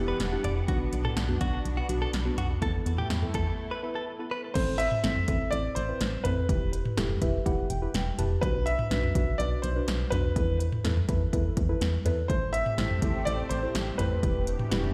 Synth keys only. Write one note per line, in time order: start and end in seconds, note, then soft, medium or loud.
0.00 0.16 B3 medium
0.00 0.16 E4 medium
0.00 0.16 G4 loud
0.32 0.52 B3 medium
0.32 0.52 E4 medium
0.32 0.52 G4 loud
0.68 1.02 B3 medium
0.68 1.02 D4 medium
0.68 1.02 F#4 loud
1.29 1.36 B3 medium
1.29 1.36 D4 medium
1.29 1.36 F#4 loud
1.41 1.68 B3 medium
1.41 1.68 D4 medium
1.41 1.68 F#4 loud
1.89 2.10 B3 medium
1.89 2.10 D4 medium
1.89 2.10 F#4 loud
2.25 2.46 B3 medium
2.25 2.46 D4 medium
2.25 2.46 F#4 loud
2.62 2.96 B3 medium
2.62 2.96 E4 medium
2.62 2.96 A4 loud
3.22 3.29 B3 medium
3.22 3.29 E4 medium
3.22 3.29 A4 loud
3.35 3.62 B3 medium
3.35 3.62 E4 medium
3.35 3.62 A4 loud
3.83 4.03 B3 medium
3.83 4.03 E4 medium
3.83 4.03 B4 loud
4.19 4.39 B3 medium
4.19 4.39 E4 medium
4.19 4.39 A4 loud
4.55 4.83 C4 medium
4.55 4.83 E4 medium
4.55 4.83 A4 medium
5.04 5.17 C4 medium
5.04 5.18 E4 medium
5.04 5.18 A4 medium
5.28 5.42 C4 medium
5.28 5.42 E4 medium
5.28 5.42 A4 medium
5.52 5.73 C4 medium
5.52 5.73 E4 medium
5.52 5.73 A4 medium
5.89 6.09 C4 medium
5.89 6.09 E4 medium
5.89 6.09 B4 medium
6.25 6.38 C4 medium
6.25 6.38 E4 medium
6.25 6.38 A4 medium
6.49 6.76 E4 medium
6.49 6.76 G4 medium
6.49 6.76 B4 medium
6.97 7.11 E4 medium
6.97 7.11 G4 medium
6.97 7.11 A4 loud
7.22 7.35 E4 medium
7.22 7.35 G4 medium
7.22 7.35 B4 loud
7.22 7.44 E5 medium
7.46 7.66 E4 medium
7.46 7.66 G4 medium
7.46 7.66 B4 loud
7.46 7.68 F#5 medium
7.70 7.93 G5 medium
7.82 8.02 E4 medium
7.82 8.02 G4 medium
7.82 8.02 B4 loud
7.94 8.17 G5 medium
8.18 8.32 E4 medium
8.18 8.32 G4 medium
8.18 8.32 B4 loud
8.18 8.41 A5 medium
8.43 8.70 D4 medium
8.43 8.70 F#4 medium
8.43 8.70 B4 medium
8.91 9.05 D4 medium
8.91 9.05 F#4 medium
8.91 9.05 B4 medium
9.15 9.29 D4 medium
9.15 9.29 F#4 medium
9.15 9.29 B4 medium
9.40 9.60 D4 medium
9.40 9.60 F#4 medium
9.40 9.60 B4 medium
9.76 9.96 D4 medium
9.76 9.96 F#4 medium
9.76 9.96 B4 medium
10.12 10.26 D4 medium
10.12 10.26 F#4 medium
10.12 10.26 B4 medium
10.36 10.63 E4 medium
10.36 10.63 A4 medium
10.36 10.63 B4 medium
10.85 10.98 E4 medium
10.85 10.98 A4 medium
10.85 10.98 B4 loud
11.09 11.22 E4 medium
11.09 11.22 A4 medium
11.09 11.22 B4 loud
11.33 11.53 E4 medium
11.33 11.53 A4 medium
11.33 11.53 B4 loud
11.69 11.89 E4 medium
11.69 11.89 A4 medium
11.69 11.89 B4 loud
12.05 12.19 E4 medium
12.05 12.19 A4 medium
12.05 12.19 B4 loud
12.30 12.57 E4 medium
12.30 12.57 A4 medium
12.30 12.57 C5 medium
12.78 12.92 E4 medium
12.78 12.92 A4 medium
12.78 12.92 C5 medium
13.02 13.16 E4 medium
13.02 13.16 A4 medium
13.02 13.16 C5 medium
13.27 13.47 E4 medium
13.27 13.47 A4 medium
13.27 13.47 C5 medium
13.63 13.83 E4 medium
13.63 13.83 A4 medium
13.63 13.83 C5 medium
13.99 14.13 E4 medium
13.99 14.13 A4 medium
13.99 14.13 C5 medium
14.23 14.50 E4 medium
14.23 14.50 G4 medium
14.23 14.50 B4 medium
14.72 14.85 E4 medium
14.72 14.85 G4 medium
14.72 14.85 B4 loud